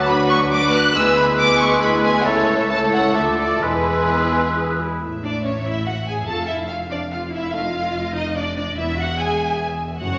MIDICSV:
0, 0, Header, 1, 11, 480
1, 0, Start_track
1, 0, Key_signature, 3, "major"
1, 0, Tempo, 434468
1, 1048, Time_signature, 3, 2, 24, 8
1, 2983, Tempo, 465116
1, 5383, Tempo, 415512
1, 11343, End_track
2, 0, Start_track
2, 0, Title_t, "Flute section"
2, 0, Program_c, 0, 73
2, 0, Note_on_c, 0, 86, 69
2, 1002, Note_off_c, 0, 86, 0
2, 1055, Note_on_c, 0, 88, 65
2, 2184, Note_off_c, 0, 88, 0
2, 2491, Note_on_c, 0, 88, 61
2, 2947, Note_off_c, 0, 88, 0
2, 2970, Note_on_c, 0, 88, 58
2, 3433, Note_off_c, 0, 88, 0
2, 3447, Note_on_c, 0, 86, 52
2, 3932, Note_off_c, 0, 86, 0
2, 3945, Note_on_c, 0, 88, 61
2, 5156, Note_off_c, 0, 88, 0
2, 11343, End_track
3, 0, Start_track
3, 0, Title_t, "Violin section"
3, 0, Program_c, 1, 48
3, 107, Note_on_c, 1, 83, 86
3, 330, Note_on_c, 1, 85, 98
3, 337, Note_off_c, 1, 83, 0
3, 418, Note_off_c, 1, 85, 0
3, 574, Note_on_c, 1, 86, 103
3, 806, Note_off_c, 1, 86, 0
3, 811, Note_on_c, 1, 90, 93
3, 1044, Note_on_c, 1, 88, 96
3, 1049, Note_off_c, 1, 90, 0
3, 1286, Note_off_c, 1, 88, 0
3, 1294, Note_on_c, 1, 83, 81
3, 1382, Note_off_c, 1, 83, 0
3, 1538, Note_on_c, 1, 86, 106
3, 1750, Note_on_c, 1, 85, 94
3, 1769, Note_off_c, 1, 86, 0
3, 2000, Note_off_c, 1, 85, 0
3, 2007, Note_on_c, 1, 83, 94
3, 2095, Note_off_c, 1, 83, 0
3, 2255, Note_on_c, 1, 80, 81
3, 2479, Note_on_c, 1, 73, 78
3, 2491, Note_off_c, 1, 80, 0
3, 2852, Note_off_c, 1, 73, 0
3, 2857, Note_on_c, 1, 76, 72
3, 2981, Note_off_c, 1, 76, 0
3, 2983, Note_on_c, 1, 81, 84
3, 3066, Note_off_c, 1, 81, 0
3, 3206, Note_on_c, 1, 78, 76
3, 3439, Note_off_c, 1, 78, 0
3, 3440, Note_on_c, 1, 76, 68
3, 3684, Note_off_c, 1, 76, 0
3, 3689, Note_on_c, 1, 74, 67
3, 3929, Note_off_c, 1, 74, 0
3, 3930, Note_on_c, 1, 71, 69
3, 5148, Note_off_c, 1, 71, 0
3, 5376, Note_on_c, 1, 76, 43
3, 6788, Note_off_c, 1, 76, 0
3, 6851, Note_on_c, 1, 77, 43
3, 8245, Note_off_c, 1, 77, 0
3, 8301, Note_on_c, 1, 75, 49
3, 9682, Note_off_c, 1, 75, 0
3, 9718, Note_on_c, 1, 76, 52
3, 11099, Note_off_c, 1, 76, 0
3, 11155, Note_on_c, 1, 73, 72
3, 11201, Note_off_c, 1, 73, 0
3, 11275, Note_on_c, 1, 73, 54
3, 11320, Note_off_c, 1, 73, 0
3, 11343, End_track
4, 0, Start_track
4, 0, Title_t, "Violin section"
4, 0, Program_c, 2, 48
4, 112, Note_on_c, 2, 71, 66
4, 121, Note_on_c, 2, 66, 65
4, 567, Note_off_c, 2, 71, 0
4, 572, Note_off_c, 2, 66, 0
4, 589, Note_on_c, 2, 66, 69
4, 592, Note_on_c, 2, 71, 70
4, 1044, Note_off_c, 2, 71, 0
4, 1048, Note_off_c, 2, 66, 0
4, 1057, Note_on_c, 2, 68, 58
4, 1057, Note_on_c, 2, 71, 69
4, 1523, Note_off_c, 2, 68, 0
4, 1523, Note_off_c, 2, 71, 0
4, 1536, Note_on_c, 2, 68, 66
4, 1539, Note_on_c, 2, 71, 60
4, 1996, Note_off_c, 2, 68, 0
4, 1996, Note_off_c, 2, 71, 0
4, 2009, Note_on_c, 2, 68, 61
4, 2010, Note_on_c, 2, 71, 64
4, 2484, Note_off_c, 2, 68, 0
4, 2485, Note_off_c, 2, 71, 0
4, 2489, Note_on_c, 2, 73, 63
4, 2491, Note_on_c, 2, 69, 61
4, 2970, Note_off_c, 2, 73, 0
4, 2972, Note_off_c, 2, 69, 0
4, 2985, Note_on_c, 2, 69, 63
4, 2991, Note_on_c, 2, 73, 56
4, 3435, Note_off_c, 2, 69, 0
4, 3443, Note_off_c, 2, 73, 0
4, 3448, Note_on_c, 2, 69, 57
4, 3450, Note_off_c, 2, 69, 0
4, 3450, Note_on_c, 2, 69, 52
4, 3925, Note_on_c, 2, 68, 54
4, 3926, Note_on_c, 2, 71, 60
4, 3934, Note_off_c, 2, 69, 0
4, 5169, Note_off_c, 2, 68, 0
4, 5169, Note_off_c, 2, 71, 0
4, 5628, Note_on_c, 2, 74, 49
4, 5855, Note_off_c, 2, 74, 0
4, 5869, Note_on_c, 2, 73, 44
4, 6106, Note_on_c, 2, 76, 52
4, 6108, Note_off_c, 2, 73, 0
4, 6351, Note_on_c, 2, 78, 52
4, 6352, Note_off_c, 2, 76, 0
4, 6589, Note_on_c, 2, 80, 56
4, 6595, Note_off_c, 2, 78, 0
4, 6682, Note_off_c, 2, 80, 0
4, 6823, Note_on_c, 2, 81, 66
4, 7055, Note_on_c, 2, 76, 49
4, 7065, Note_off_c, 2, 81, 0
4, 7148, Note_off_c, 2, 76, 0
4, 7296, Note_on_c, 2, 77, 50
4, 7389, Note_off_c, 2, 77, 0
4, 7555, Note_on_c, 2, 74, 50
4, 7648, Note_off_c, 2, 74, 0
4, 7801, Note_on_c, 2, 77, 50
4, 7894, Note_off_c, 2, 77, 0
4, 8058, Note_on_c, 2, 76, 55
4, 8260, Note_on_c, 2, 77, 63
4, 8287, Note_off_c, 2, 76, 0
4, 8996, Note_off_c, 2, 77, 0
4, 9002, Note_on_c, 2, 75, 57
4, 9238, Note_off_c, 2, 75, 0
4, 9242, Note_on_c, 2, 74, 56
4, 9471, Note_off_c, 2, 74, 0
4, 9484, Note_on_c, 2, 74, 55
4, 9715, Note_off_c, 2, 74, 0
4, 9716, Note_on_c, 2, 76, 59
4, 9948, Note_off_c, 2, 76, 0
4, 9959, Note_on_c, 2, 78, 63
4, 10193, Note_off_c, 2, 78, 0
4, 10193, Note_on_c, 2, 80, 64
4, 10671, Note_off_c, 2, 80, 0
4, 11119, Note_on_c, 2, 78, 73
4, 11343, Note_off_c, 2, 78, 0
4, 11343, End_track
5, 0, Start_track
5, 0, Title_t, "Oboe"
5, 0, Program_c, 3, 68
5, 0, Note_on_c, 3, 71, 65
5, 2451, Note_off_c, 3, 71, 0
5, 2486, Note_on_c, 3, 69, 62
5, 2944, Note_off_c, 3, 69, 0
5, 2991, Note_on_c, 3, 69, 54
5, 3315, Note_off_c, 3, 69, 0
5, 3451, Note_on_c, 3, 69, 55
5, 3939, Note_on_c, 3, 71, 53
5, 3954, Note_off_c, 3, 69, 0
5, 5153, Note_off_c, 3, 71, 0
5, 11343, End_track
6, 0, Start_track
6, 0, Title_t, "Clarinet"
6, 0, Program_c, 4, 71
6, 0, Note_on_c, 4, 66, 61
6, 733, Note_off_c, 4, 66, 0
6, 1057, Note_on_c, 4, 64, 64
6, 2454, Note_off_c, 4, 64, 0
6, 2495, Note_on_c, 4, 64, 64
6, 2949, Note_off_c, 4, 64, 0
6, 2979, Note_on_c, 4, 64, 63
6, 3443, Note_on_c, 4, 65, 59
6, 3458, Note_off_c, 4, 64, 0
6, 3925, Note_on_c, 4, 64, 54
6, 3941, Note_off_c, 4, 65, 0
6, 4368, Note_off_c, 4, 64, 0
6, 4416, Note_on_c, 4, 59, 61
6, 4796, Note_on_c, 4, 64, 57
6, 4811, Note_off_c, 4, 59, 0
6, 4918, Note_on_c, 4, 68, 68
6, 4933, Note_off_c, 4, 64, 0
6, 5154, Note_on_c, 4, 64, 58
6, 5169, Note_off_c, 4, 68, 0
6, 5385, Note_off_c, 4, 64, 0
6, 11343, End_track
7, 0, Start_track
7, 0, Title_t, "Viola section"
7, 0, Program_c, 5, 48
7, 87, Note_on_c, 5, 54, 61
7, 90, Note_on_c, 5, 62, 66
7, 555, Note_off_c, 5, 54, 0
7, 556, Note_off_c, 5, 62, 0
7, 573, Note_on_c, 5, 54, 65
7, 573, Note_on_c, 5, 62, 67
7, 1040, Note_off_c, 5, 54, 0
7, 1040, Note_off_c, 5, 62, 0
7, 1056, Note_on_c, 5, 59, 63
7, 1057, Note_on_c, 5, 64, 64
7, 1516, Note_off_c, 5, 64, 0
7, 1518, Note_off_c, 5, 59, 0
7, 1529, Note_on_c, 5, 64, 63
7, 1532, Note_on_c, 5, 59, 59
7, 1999, Note_off_c, 5, 59, 0
7, 2000, Note_off_c, 5, 64, 0
7, 2012, Note_on_c, 5, 59, 64
7, 2017, Note_on_c, 5, 64, 68
7, 2480, Note_off_c, 5, 64, 0
7, 2486, Note_off_c, 5, 59, 0
7, 2493, Note_on_c, 5, 57, 56
7, 2493, Note_on_c, 5, 64, 68
7, 2970, Note_off_c, 5, 57, 0
7, 2972, Note_off_c, 5, 64, 0
7, 2984, Note_on_c, 5, 57, 57
7, 2985, Note_on_c, 5, 64, 61
7, 3439, Note_off_c, 5, 57, 0
7, 3440, Note_off_c, 5, 64, 0
7, 3451, Note_on_c, 5, 57, 57
7, 3456, Note_on_c, 5, 65, 52
7, 3924, Note_on_c, 5, 64, 56
7, 3925, Note_off_c, 5, 57, 0
7, 3929, Note_on_c, 5, 52, 54
7, 3937, Note_off_c, 5, 65, 0
7, 5146, Note_off_c, 5, 52, 0
7, 5168, Note_off_c, 5, 64, 0
7, 5627, Note_on_c, 5, 62, 51
7, 5720, Note_off_c, 5, 62, 0
7, 5868, Note_on_c, 5, 61, 44
7, 5961, Note_off_c, 5, 61, 0
7, 6105, Note_on_c, 5, 64, 56
7, 6346, Note_off_c, 5, 64, 0
7, 6349, Note_on_c, 5, 66, 57
7, 6441, Note_off_c, 5, 66, 0
7, 6604, Note_on_c, 5, 68, 62
7, 6836, Note_off_c, 5, 68, 0
7, 6836, Note_on_c, 5, 69, 75
7, 7071, Note_off_c, 5, 69, 0
7, 7084, Note_on_c, 5, 64, 53
7, 7177, Note_off_c, 5, 64, 0
7, 7318, Note_on_c, 5, 65, 56
7, 7410, Note_off_c, 5, 65, 0
7, 7558, Note_on_c, 5, 62, 56
7, 7651, Note_off_c, 5, 62, 0
7, 7804, Note_on_c, 5, 65, 56
7, 8030, Note_on_c, 5, 64, 63
7, 8039, Note_off_c, 5, 65, 0
7, 8273, Note_off_c, 5, 64, 0
7, 8281, Note_on_c, 5, 65, 67
7, 8992, Note_off_c, 5, 65, 0
7, 9005, Note_on_c, 5, 63, 64
7, 9238, Note_on_c, 5, 62, 63
7, 9245, Note_off_c, 5, 63, 0
7, 9330, Note_off_c, 5, 62, 0
7, 9477, Note_on_c, 5, 62, 64
7, 9570, Note_off_c, 5, 62, 0
7, 9708, Note_on_c, 5, 64, 69
7, 9930, Note_on_c, 5, 66, 72
7, 9944, Note_off_c, 5, 64, 0
7, 10022, Note_off_c, 5, 66, 0
7, 10171, Note_on_c, 5, 68, 72
7, 10650, Note_off_c, 5, 68, 0
7, 11129, Note_on_c, 5, 66, 77
7, 11343, Note_off_c, 5, 66, 0
7, 11343, End_track
8, 0, Start_track
8, 0, Title_t, "French horn section"
8, 0, Program_c, 6, 60
8, 116, Note_on_c, 6, 62, 70
8, 1036, Note_on_c, 6, 71, 76
8, 1038, Note_off_c, 6, 62, 0
8, 2003, Note_off_c, 6, 71, 0
8, 2022, Note_on_c, 6, 68, 69
8, 2491, Note_off_c, 6, 68, 0
8, 2492, Note_on_c, 6, 69, 74
8, 3258, Note_off_c, 6, 69, 0
8, 3434, Note_on_c, 6, 69, 63
8, 3916, Note_off_c, 6, 69, 0
8, 3917, Note_on_c, 6, 68, 53
8, 5118, Note_off_c, 6, 68, 0
8, 5368, Note_on_c, 6, 64, 37
8, 5371, Note_on_c, 6, 57, 41
8, 5544, Note_off_c, 6, 64, 0
8, 5546, Note_off_c, 6, 57, 0
8, 6837, Note_on_c, 6, 65, 45
8, 6839, Note_on_c, 6, 57, 42
8, 7004, Note_off_c, 6, 65, 0
8, 7006, Note_off_c, 6, 57, 0
8, 8271, Note_on_c, 6, 63, 41
8, 8275, Note_on_c, 6, 57, 48
8, 8445, Note_off_c, 6, 63, 0
8, 8447, Note_off_c, 6, 57, 0
8, 9715, Note_on_c, 6, 59, 51
8, 9717, Note_on_c, 6, 64, 52
8, 9881, Note_off_c, 6, 59, 0
8, 9882, Note_off_c, 6, 64, 0
8, 11147, Note_on_c, 6, 61, 56
8, 11150, Note_on_c, 6, 57, 56
8, 11343, Note_off_c, 6, 57, 0
8, 11343, Note_off_c, 6, 61, 0
8, 11343, End_track
9, 0, Start_track
9, 0, Title_t, "Bassoon"
9, 0, Program_c, 7, 70
9, 0, Note_on_c, 7, 54, 76
9, 719, Note_off_c, 7, 54, 0
9, 1043, Note_on_c, 7, 56, 78
9, 2447, Note_off_c, 7, 56, 0
9, 2492, Note_on_c, 7, 57, 68
9, 2947, Note_off_c, 7, 57, 0
9, 2982, Note_on_c, 7, 57, 61
9, 3438, Note_off_c, 7, 57, 0
9, 3446, Note_on_c, 7, 57, 53
9, 3935, Note_on_c, 7, 56, 58
9, 3950, Note_off_c, 7, 57, 0
9, 5151, Note_off_c, 7, 56, 0
9, 11343, End_track
10, 0, Start_track
10, 0, Title_t, "Cello section"
10, 0, Program_c, 8, 48
10, 0, Note_on_c, 8, 38, 65
10, 1021, Note_off_c, 8, 38, 0
10, 1059, Note_on_c, 8, 38, 70
10, 2471, Note_off_c, 8, 38, 0
10, 2487, Note_on_c, 8, 37, 59
10, 3426, Note_off_c, 8, 37, 0
10, 3444, Note_on_c, 8, 38, 60
10, 3929, Note_on_c, 8, 40, 49
10, 3931, Note_off_c, 8, 38, 0
10, 5146, Note_off_c, 8, 40, 0
10, 5375, Note_on_c, 8, 45, 38
10, 6787, Note_off_c, 8, 45, 0
10, 6837, Note_on_c, 8, 41, 43
10, 9673, Note_off_c, 8, 41, 0
10, 9713, Note_on_c, 8, 40, 52
10, 11115, Note_off_c, 8, 40, 0
10, 11136, Note_on_c, 8, 42, 60
10, 11186, Note_off_c, 8, 42, 0
10, 11254, Note_on_c, 8, 42, 54
10, 11303, Note_off_c, 8, 42, 0
10, 11343, End_track
11, 0, Start_track
11, 0, Title_t, "Double bass section"
11, 0, Program_c, 10, 48
11, 0, Note_on_c, 10, 38, 74
11, 1026, Note_off_c, 10, 38, 0
11, 1051, Note_on_c, 10, 38, 72
11, 2466, Note_off_c, 10, 38, 0
11, 2506, Note_on_c, 10, 37, 65
11, 3435, Note_off_c, 10, 37, 0
11, 3454, Note_on_c, 10, 38, 56
11, 3936, Note_off_c, 10, 38, 0
11, 3940, Note_on_c, 10, 28, 60
11, 5151, Note_off_c, 10, 28, 0
11, 5387, Note_on_c, 10, 33, 47
11, 6794, Note_off_c, 10, 33, 0
11, 6844, Note_on_c, 10, 29, 49
11, 9677, Note_off_c, 10, 29, 0
11, 9716, Note_on_c, 10, 28, 55
11, 11116, Note_off_c, 10, 28, 0
11, 11139, Note_on_c, 10, 30, 75
11, 11188, Note_off_c, 10, 30, 0
11, 11343, End_track
0, 0, End_of_file